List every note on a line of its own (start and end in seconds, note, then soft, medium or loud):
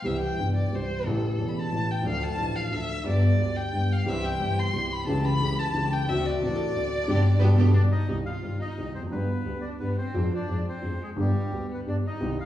0.02 0.36 C2 medium
0.02 0.36 C3 medium
0.02 0.35 E3 medium
0.02 0.36 G3 medium
0.02 0.37 C4 medium
0.02 0.37 G4 medium
0.02 0.20 E5 medium
0.21 0.52 G5 medium
0.36 0.70 G1 medium
0.36 0.70 G1 soft
0.36 0.70 G2 soft
0.36 0.68 E3 soft
0.36 0.70 G3 soft
0.36 0.71 C4 soft
0.36 0.71 G4 soft
0.55 0.76 D5 medium
0.70 1.04 C2 medium
0.70 1.04 C2 soft
0.70 1.04 C3 soft
0.70 1.02 E3 soft
0.70 1.04 G3 soft
0.70 1.04 C4 soft
0.74 1.05 G4 soft
0.74 1.08 C5 medium
1.04 1.37 A1 medium
1.04 1.37 A2 medium
1.04 1.35 E3 medium
1.04 1.36 A3 medium
1.04 1.37 C#4 medium
1.04 1.49 A4 medium
1.08 1.38 G4 medium
1.36 1.70 E1 soft
1.36 1.70 E1 medium
1.36 1.70 E2 soft
1.36 1.67 E3 soft
1.36 1.69 A3 soft
1.36 1.70 C#4 soft
1.40 1.71 G4 soft
1.48 1.61 B5 medium
1.59 1.93 A5 medium
1.69 2.03 A1 medium
1.69 2.03 A1 soft
1.69 2.03 A2 soft
1.69 2.02 E3 soft
1.69 2.02 A3 soft
1.69 2.03 C#4 soft
1.73 2.04 G4 soft
1.91 2.06 G5 medium
2.02 2.36 D2 medium
2.02 2.36 D3 medium
2.02 2.34 F3 medium
2.02 2.36 A3 medium
2.02 2.37 D4 medium
2.06 2.37 A4 medium
2.06 2.25 F5 medium
2.23 2.57 A5 loud
2.36 2.70 A1 medium
2.36 2.70 A1 soft
2.36 2.70 A2 soft
2.36 2.67 F3 soft
2.36 2.69 A3 soft
2.36 2.70 D4 soft
2.40 2.71 A4 soft
2.56 2.74 F5 medium
2.69 3.03 D2 medium
2.69 3.04 D2 soft
2.69 3.01 D3 soft
2.69 3.02 F3 soft
2.69 3.03 A3 soft
2.69 3.04 D4 soft
2.69 3.06 E5 loud
2.73 3.05 A4 soft
3.03 3.37 G1 medium
3.03 3.37 G2 medium
3.03 3.35 D3 medium
3.03 3.36 G3 medium
3.03 3.37 B3 medium
3.03 3.38 G4 medium
3.08 3.58 D5 medium
3.37 3.71 D2 soft
3.37 3.71 D2 medium
3.37 3.69 D3 soft
3.37 3.70 G3 soft
3.37 3.71 B3 soft
3.37 3.72 G4 soft
3.57 3.94 G5 medium
3.70 4.05 G1 soft
3.70 4.05 G1 medium
3.70 4.05 G2 soft
3.70 4.04 D3 soft
3.70 4.04 G3 soft
3.70 4.05 B3 soft
3.75 4.06 G4 soft
3.92 4.10 F5 medium
4.05 4.38 C2 medium
4.05 4.39 C2 medium
4.05 4.39 C3 medium
4.05 4.36 E3 medium
4.05 4.37 G3 medium
4.05 4.39 C4 medium
4.05 4.39 E4 medium
4.05 4.39 G4 medium
4.05 4.40 G4 medium
4.05 4.26 E5 medium
4.25 4.60 G5 loud
4.38 4.72 G1 soft
4.38 4.73 G1 medium
4.38 4.72 G2 soft
4.38 4.70 E3 soft
4.38 4.71 G3 soft
4.38 4.72 C4 soft
4.38 4.72 E4 soft
4.38 4.72 G4 soft
4.38 4.73 G4 soft
4.59 4.94 C6 loud
4.71 5.06 C2 soft
4.71 5.06 C2 medium
4.71 5.06 C3 soft
4.71 5.03 E3 soft
4.71 5.05 G3 soft
4.71 5.06 C4 soft
4.71 5.06 E4 soft
4.71 5.06 G4 soft
4.92 5.07 B5 loud
5.05 5.39 C#2 medium
5.05 5.39 C#3 medium
5.05 5.37 E3 medium
5.05 5.38 A3 medium
5.05 5.39 A3 medium
5.05 5.39 C#4 medium
5.05 5.40 C#4 medium
5.05 5.39 G4 medium
5.05 5.26 A5 medium
5.09 5.40 G4 medium
5.25 5.61 B5 loud
5.39 5.72 C#2 soft
5.39 5.72 C#2 medium
5.39 5.72 C#3 soft
5.39 5.70 E3 soft
5.39 5.72 A3 soft
5.39 5.73 A3 soft
5.39 5.73 C#4 soft
5.39 5.73 G4 medium
5.39 5.74 G4 soft
5.59 5.94 A5 loud
5.72 6.05 C#2 medium
5.72 6.06 C#2 soft
5.72 6.06 C#3 soft
5.72 6.05 E3 soft
5.72 6.06 A3 soft
5.72 6.06 C#4 soft
5.72 6.06 G4 medium
5.76 6.07 G4 soft
5.93 6.10 G5 loud
6.06 6.39 D2 medium
6.06 6.40 D2 medium
6.06 6.38 D3 medium
6.06 6.39 A3 medium
6.06 6.39 C4 medium
6.06 6.40 C4 medium
6.06 6.39 D4 medium
6.06 6.39 F#4 medium
6.06 6.40 F#4 medium
6.06 6.27 E5 medium
6.26 7.73 D5 loud
6.39 6.73 A1 medium
6.39 6.73 A1 soft
6.39 6.73 A2 medium
6.39 6.71 D3 soft
6.39 6.72 A3 soft
6.39 6.72 C4 soft
6.39 6.73 C4 soft
6.39 6.72 D4 soft
6.39 6.72 F#4 medium
6.44 6.74 F#4 soft
6.56 7.08 A4 loud
6.72 7.06 D2 soft
6.72 7.06 D2 medium
6.72 7.06 D3 soft
6.72 7.06 A3 soft
6.72 7.05 C4 soft
6.72 7.06 C4 soft
6.72 7.06 D4 soft
6.72 7.06 F#4 soft
6.72 7.07 F#4 soft
7.04 7.20 G1 loud
7.04 7.18 C3 loud
7.04 7.18 D3 loud
7.04 7.18 G3 medium
7.04 7.18 C4 medium
7.04 7.18 D4 medium
7.04 7.18 G4 medium
7.04 7.37 D5 loud
7.39 7.53 G1 medium
7.39 7.52 B2 medium
7.39 7.52 D3 medium
7.39 7.52 G3 medium
7.39 7.51 B3 loud
7.39 7.51 D4 loud
7.39 7.51 G4 loud
7.39 7.56 B4 medium
7.56 7.70 G1 loud
7.56 7.69 B2 medium
7.56 7.69 D3 medium
7.56 7.69 G3 medium
7.56 7.69 B3 medium
7.56 7.69 D4 medium
7.56 7.69 G4 medium
7.56 7.72 A4 medium
7.72 7.82 D4 medium
7.72 8.08 G4 medium
7.72 7.83 D5 medium
7.92 8.08 D#4 medium
7.92 8.09 D#5 medium
8.08 8.23 C2 medium
8.08 8.24 C2 medium
8.08 8.24 C3 medium
8.08 8.23 D#3 medium
8.08 8.23 G3 medium
8.08 8.23 C4 medium
8.08 8.16 D#4 medium
8.08 8.24 G4 medium
8.08 8.18 D#5 medium
8.26 8.59 F4 medium
8.26 8.58 F5 medium
8.42 8.58 G1 soft
8.42 8.58 G2 soft
8.42 8.58 D#3 soft
8.42 8.58 G3 soft
8.42 8.58 C4 soft
8.42 8.58 G4 soft
8.59 8.92 D#4 medium
8.59 8.93 D#5 medium
8.77 8.92 C2 soft
8.77 8.93 C2 soft
8.77 8.93 C3 soft
8.77 8.92 D#3 soft
8.77 8.93 G3 soft
8.77 8.93 C4 soft
8.77 8.92 G4 soft
8.95 9.11 F1 soft
8.95 9.03 C4 medium
8.95 9.03 C5 medium
8.99 9.04 E2 soft
8.99 9.08 F2 soft
9.06 9.12 F#2 medium
9.11 9.27 G1 medium
9.11 9.26 G2 medium
9.11 9.26 D3 medium
9.11 9.27 G3 medium
9.11 9.27 B3 medium
9.11 9.61 B3 medium
9.11 9.27 G4 medium
9.11 9.65 B4 medium
9.45 9.61 D2 medium
9.45 9.61 D2 soft
9.45 9.61 D3 soft
9.45 9.61 G3 soft
9.45 9.61 B3 soft
9.45 9.61 G4 soft
9.61 9.69 D5 medium
9.66 9.73 D4 medium
9.79 9.95 G1 soft
9.79 9.95 G2 soft
9.79 9.95 D3 soft
9.79 9.95 G3 soft
9.79 9.95 B3 soft
9.79 9.97 B3 medium
9.79 9.95 G4 soft
9.79 9.96 B4 medium
9.98 10.30 C4 medium
9.98 10.33 C5 medium
10.14 10.29 F2 medium
10.14 10.29 D3 medium
10.14 10.29 F3 medium
10.14 10.29 G#3 medium
10.14 10.29 F4 medium
10.33 10.65 D4 medium
10.33 10.66 D5 medium
10.48 10.63 F2 medium
10.48 10.63 F2 soft
10.48 10.63 D3 soft
10.48 10.64 F3 soft
10.48 10.64 G#3 soft
10.48 10.64 F4 soft
10.68 10.99 C4 medium
10.68 11.03 C5 medium
10.82 10.97 F2 soft
10.82 10.97 D3 soft
10.82 10.97 F3 soft
10.82 10.97 G#3 soft
10.82 10.97 F4 soft
11.01 11.09 G#3 medium
11.01 11.10 G#4 medium
11.16 11.32 G1 medium
11.16 11.31 G2 medium
11.16 11.31 D3 medium
11.16 11.31 G3 medium
11.16 11.67 G3 medium
11.16 11.31 B3 medium
11.16 11.32 G4 medium
11.20 11.67 G4 medium
11.51 11.66 D2 soft
11.51 11.67 D2 medium
11.51 11.66 D3 soft
11.51 11.66 G3 soft
11.51 11.66 B3 soft
11.51 11.66 G4 soft
11.71 11.78 B3 soft
11.71 11.81 B4 medium
11.85 12.01 G1 soft
11.85 12.02 G1 soft
11.85 12.01 G2 soft
11.85 12.01 D3 soft
11.85 12.01 G3 soft
11.85 12.01 B3 soft
11.85 11.95 D4 medium
11.85 12.01 G4 soft
11.85 11.96 D5 medium
12.07 12.38 D#4 medium
12.07 12.38 D#5 medium
12.20 12.35 C2 medium
12.20 12.36 C2 medium
12.20 12.36 C3 medium
12.20 12.35 D#3 medium
12.20 12.35 G3 medium
12.20 12.35 C4 medium
12.20 12.35 G4 medium
12.40 12.46 F4 medium
12.40 12.46 F5 medium